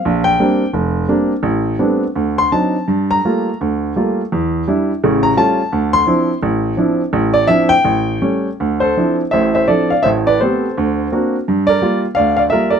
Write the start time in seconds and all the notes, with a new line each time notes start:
Already playing: F5
0.05 A#1
0.24 G5
0.40 G3 A#3 C4 D4
0.73 F1
1.08 G3 A#3 C4 D4
1.43 A1
1.79 G3 A3 B3 C4 D4
2.16 D2
2.38 C6
2.52 F#3 C4 D4 D#4 A5
2.88 G2
3.11 A#5
3.25 G3 A3 A#3 F4
3.61 D2
3.96 G3 A3 A#3 F4
4.32 E2
4.67 G3 D4 E4
5.04 A1 C#3
5.23 A#5
5.37 G3 A3 C#4 F4 A5
5.72 D2
5.93 C6
6.07 F3 C4 D4 E4
6.43 A1
6.77 F3 C4 D4 E4
7.13 A1
7.34 D5
7.47 F3 C4 D4 E4 E5
7.69 G5
7.85 A1
8.22 G3 A3 C#4
8.60 D2
8.80 A4 C5
8.97 F3 C4 D4 E4
9.31 A1 A2 C5 E5
9.55 C5 E5
9.68 F3 C4 D4 E4 A4 D5
9.90 D5 F5
10.03 A1 A2 C5 E5
10.27 B4 D5
10.41 A3 B3 C4 G4 A4 C5
10.78 D2
11.12 A#3 C4 D4 F#4
11.48 G2
11.67 A#4 D5
11.81 G3 A#3 F4
12.15 D2 D5 F5
12.37 D5 F5
12.50 G3 A#3 F4 A#4 E5
12.70 A#4 D5